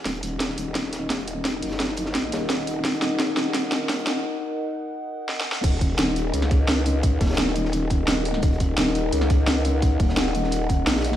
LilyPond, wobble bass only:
\new Staff \with { instrumentName = "Wobble bass" } { \clef bass \time 4/4 \key ees \minor \tempo 4 = 172 ees,,8 ees,,4 ees,,8 ees,,4 ees,,4~ | ees,,8 ges,,4. bes,,8 ees,,4. | ees,,8 ees,,4 ees,,8 ees,,4 ees,,4 | r1 |
ees,,4 ees,,4 des,2~ | des,8 ees,,2~ ees,,8 ees,,4 | ees,,4 ees,,4 des,2~ | des,8 ees,,2~ ees,,8 bes,,4 | }